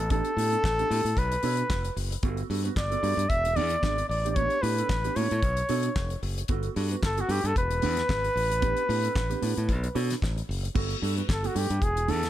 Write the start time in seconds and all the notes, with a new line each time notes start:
Already playing: A1 A4
0.00 closed hi-hat
0.10 B3 D4 G4 A4, kick, closed hi-hat
0.25 closed hi-hat
0.37 A2 B3 D4 G4, open hi-hat
0.52 B3 D4 A4, closed hi-hat
0.64 A1, kick, snare, clap
0.79 B3 D4 G4, closed hi-hat
0.90 A2 B3 D4 G4, open hi-hat
1.05 A2, muted clean electric guitar stroke, closed hi-hat
1.17 B1 B4, muted clean electric guitar stroke, kick, closed hi-hat
1.32 muted clean electric guitar stroke, closed hi-hat
1.43 B2 D4 A4 C#5, open hi-hat
1.57 muted clean electric guitar stroke, closed hi-hat
1.70 F1, muted clean electric guitar stroke, kick, snare, clap
1.85 muted clean electric guitar stroke, closed hi-hat
1.96 F#1, open hi-hat
2.11 muted clean electric guitar stroke, closed hi-hat
2.23 G1 B3 F#4 A4, kick, closed hi-hat
2.37 closed hi-hat
2.50 G2 B3 F#4 A4, open hi-hat
2.64 B3 F#4 B4, closed hi-hat
2.76 G1 D5, muted clean electric guitar stroke, kick, snare, clap
2.91 B3 F#4 A4, closed hi-hat
3.03 G2 B3 F#4 A4, open hi-hat
3.17 G2, muted clean electric guitar stroke, closed hi-hat
3.29 E1 E5, muted clean electric guitar stroke, kick, closed hi-hat
3.45 muted clean electric guitar stroke, closed hi-hat
3.56 E2 B3 D4 G#4 D5, open hi-hat
3.70 muted clean electric guitar stroke, closed hi-hat
3.83 G#1 B3 D4 G#4, kick, snare, clap
3.98 muted clean electric guitar stroke, closed hi-hat
4.09 A1 D5, muted clean electric guitar stroke, open hi-hat
4.25 B3 D4 G4, closed hi-hat
4.31 D5
4.36 B3 D4 G4 C#5, kick, closed hi-hat
4.50 closed hi-hat
4.62 A2 B3 D4 G4 B4, open hi-hat
4.78 B3 D4 A4, closed hi-hat
4.89 A1, muted clean electric guitar stroke, kick, snare, clap
5.04 B3 D4 G4, closed hi-hat
5.16 A2 B3 D4 G4 C#5, open hi-hat
5.31 A2, muted clean electric guitar stroke, closed hi-hat
5.43 B1, muted clean electric guitar stroke, kick, closed hi-hat
5.57 muted clean electric guitar stroke, closed hi-hat
5.69 B2 D4 A4 C#5, open hi-hat
5.83 muted clean electric guitar stroke, closed hi-hat
5.96 F1, muted clean electric guitar stroke, kick, snare, clap
6.10 muted clean electric guitar stroke, closed hi-hat
6.23 F#1, open hi-hat
6.38 muted clean electric guitar stroke, closed hi-hat
6.48 G1 B3 F#4 A4, kick, closed hi-hat
6.63 closed hi-hat
6.76 G2 B3 F#4 A4, open hi-hat
6.91 B3 F#4 B4, closed hi-hat
7.03 G1 A4, muted clean electric guitar stroke, kick, snare, clap
7.17 B3 F#4 A4, closed hi-hat
7.29 G2 B3 F#4 G4 A4, open hi-hat
7.44 G2 A4, muted clean electric guitar stroke, closed hi-hat
7.56 E1 B4, muted clean electric guitar stroke, kick, closed hi-hat
7.71 muted clean electric guitar stroke, closed hi-hat
7.82 E2 B3 D4 G#4, open hi-hat
7.97 muted clean electric guitar stroke, snare, closed hi-hat
8.09 G#1, muted clean electric guitar stroke, kick, snare, clap
8.24 muted clean electric guitar stroke, closed hi-hat
8.35 A1, open hi-hat
8.50 muted clean electric guitar stroke, closed hi-hat
8.62 B3 D4 G4, kick, closed hi-hat
8.77 closed hi-hat
8.88 A2 B3 D4 G4, open hi-hat
9.03 B3 D4 A4, closed hi-hat
9.15 A1, kick, snare, clap
9.30 B3 D4 G4, closed hi-hat
9.42 A2 B3 D4 G4, open hi-hat
9.57 A2, muted clean electric guitar stroke, closed hi-hat
9.69 B1, muted clean electric guitar stroke, kick, closed hi-hat
9.84 muted clean electric guitar stroke, closed hi-hat
9.95 B2 D4 A4 C#5, open hi-hat
10.10 muted clean electric guitar stroke, snare, closed hi-hat
10.22 A1, muted clean electric guitar stroke, kick, snare, clap
10.36 muted clean electric guitar stroke, closed hi-hat
10.49 F#1, open hi-hat
10.63 muted clean electric guitar stroke, closed hi-hat
10.75 G1 B3 F#4 A4, kick, crash
10.90 closed hi-hat
11.01 G2 B3 F#4 A4, open hi-hat
11.17 B3 F#4 B4, closed hi-hat
11.28 G1 A4, muted clean electric guitar stroke, kick, snare, clap
11.43 B3 F#4 A4, closed hi-hat
11.55 G2 B3 F#4 G4 A4, open hi-hat
11.70 G2, muted clean electric guitar stroke, closed hi-hat
11.81 E1 G#4, muted clean electric guitar stroke, kick, closed hi-hat
11.96 muted clean electric guitar stroke, closed hi-hat
12.08 E2 B3 D4 G#4 A4, open hi-hat
12.23 muted clean electric guitar stroke, snare, closed hi-hat